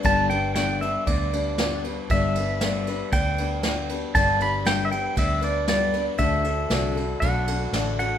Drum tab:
RD |xxxxxxxx|xxxxxxxx|xxxxxxxx|xxxxxxxx|
SD |--o---o-|--o---o-|--o---o-|--o---o-|
BD |o---o---|o---o---|o---o---|o---o---|